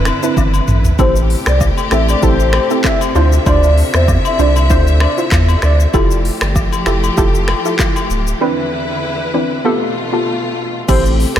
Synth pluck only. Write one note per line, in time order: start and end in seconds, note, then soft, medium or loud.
0.23 0.39 C4 medium
0.23 0.39 D4 medium
0.23 0.39 E4 medium
0.23 0.40 B4 medium
0.99 1.85 C4 medium
0.99 1.85 E4 medium
0.99 1.85 G4 medium
0.99 1.85 A4 loud
1.91 2.20 C4 medium
1.91 2.20 E4 medium
1.91 2.21 G4 medium
1.91 2.21 A4 medium
2.22 2.41 C4 medium
2.22 2.41 E4 medium
2.22 2.42 G4 medium
2.22 2.42 A4 loud
2.70 2.87 C4 medium
2.70 2.87 E4 medium
2.70 2.87 G4 medium
2.70 2.87 A4 medium
3.15 3.44 D4 medium
3.15 3.44 E4 medium
3.15 3.44 F4 medium
3.15 3.44 C5 loud
3.46 4.32 D4 medium
3.46 4.33 E4 medium
3.46 4.33 F4 medium
3.46 4.33 C5 loud
4.39 4.68 D4 medium
4.39 4.68 E4 medium
4.39 4.68 F4 medium
4.39 4.68 C5 medium
4.70 4.89 D4 loud
4.70 4.89 E4 medium
4.70 4.89 F4 medium
4.70 4.89 C5 loud
5.18 5.34 D4 medium
5.18 5.34 E4 medium
5.18 5.34 F4 medium
5.18 5.34 C5 medium
5.94 6.80 E4 medium
5.94 6.80 F4 medium
5.94 6.80 G4 medium
5.94 6.80 A4 loud
6.86 7.15 E4 medium
6.86 7.15 F4 medium
6.86 7.15 G4 medium
6.86 7.15 A4 medium
7.17 7.36 E4 loud
7.17 7.36 F4 medium
7.17 7.36 G4 medium
7.17 7.37 A4 loud
7.65 7.82 E4 medium
7.65 7.82 F4 medium
7.65 7.82 G4 medium
7.65 7.82 A4 medium
8.41 9.27 E3 loud
8.41 9.27 C4 medium
8.41 9.27 D4 medium
8.41 9.27 E4 medium
8.41 9.28 B4 loud
9.34 9.63 E3 medium
9.34 9.63 C4 medium
9.34 9.63 D4 medium
9.34 9.63 E4 medium
9.34 9.63 B4 medium
9.65 9.84 B3 medium
9.65 9.84 F4 medium
9.65 9.84 G4 medium
9.65 9.84 A4 loud
10.13 10.29 B3 medium
10.13 10.29 F4 medium
10.13 10.29 G4 medium
10.13 10.29 A4 medium
10.88 11.40 C4 medium
10.88 11.40 E4 medium
10.88 11.40 G4 medium
10.88 11.40 A4 loud